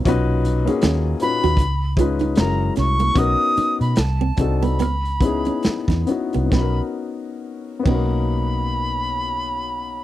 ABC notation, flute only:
X:1
M:4/4
L:1/16
Q:"Swing 16ths" 1/4=72
K:B
V:1 name="Flute"
z6 b4 z2 a2 c'2 | d'3 b =a3 b6- b z2 | b z4 z b8- b2 |]